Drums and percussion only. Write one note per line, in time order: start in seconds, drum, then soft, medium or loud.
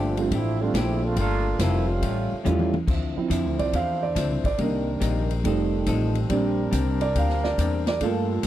0.17 ride soft
0.31 kick soft
0.31 ride medium
0.74 kick soft
0.74 snare medium
0.74 hi-hat pedal medium
0.74 ride medium
1.16 kick soft
1.16 ride medium
1.59 kick soft
1.59 snare medium
1.59 hi-hat pedal medium
1.59 ride medium
2.02 kick soft
2.02 ride medium
2.45 hi-hat pedal medium
2.45 mid tom medium
2.59 mid tom medium
2.74 mid tom medium
2.88 kick medium
2.88 crash medium
3.30 kick soft
3.30 hi-hat pedal medium
3.30 ride medium
3.59 ride soft
3.73 kick soft
3.73 ride medium
4.16 kick soft
4.16 snare soft
4.16 hi-hat pedal medium
4.16 ride medium
4.44 kick medium
4.44 ride soft
4.58 kick soft
4.58 ride medium
5.01 kick soft
5.01 hi-hat pedal medium
5.01 ride medium
5.30 ride soft
5.44 kick soft
5.44 ride medium
5.86 kick soft
5.86 hi-hat pedal medium
5.86 ride medium
6.15 ride soft
6.30 kick soft
6.30 ride medium
6.72 kick soft
6.72 hi-hat pedal medium
6.72 ride medium
7.01 ride soft
7.15 kick soft
7.15 ride medium
7.29 snare soft
7.44 snare soft
7.58 kick soft
7.58 hi-hat pedal medium
7.58 ride medium
7.87 snare medium
7.87 ride soft
8.01 kick soft
8.01 ride medium
8.43 kick soft
8.43 hi-hat pedal medium
8.43 ride medium